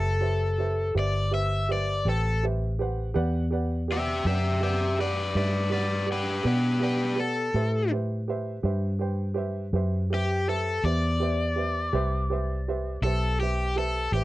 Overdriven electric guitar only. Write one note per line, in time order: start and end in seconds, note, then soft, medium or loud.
0.00 0.93 A4 medium
0.99 1.34 D5 medium
1.34 1.70 E5 medium
1.72 2.07 D5 medium
2.09 2.44 A4 medium
3.92 4.25 G4 medium
3.92 4.26 E5 medium
4.27 4.61 G4 medium
4.27 4.62 E5 medium
4.63 4.97 G4 medium
4.63 4.99 E5 medium
5.00 5.34 B4 medium
5.00 5.36 D5 medium
5.37 5.71 B4 medium
5.37 5.72 D5 medium
5.72 6.06 B4 medium
5.72 6.08 D5 medium
6.12 6.45 G4 medium
6.12 6.46 B4 medium
6.47 6.80 G4 medium
6.47 6.82 B4 medium
6.83 7.17 G4 medium
6.83 7.19 B4 medium
7.20 7.90 A4 medium
10.14 10.48 G4 medium
10.49 10.84 A4 medium
10.85 13.00 D5 medium
13.04 13.39 A4 medium
13.40 13.76 G4 medium
13.78 14.13 A4 medium
14.14 14.24 G4 loud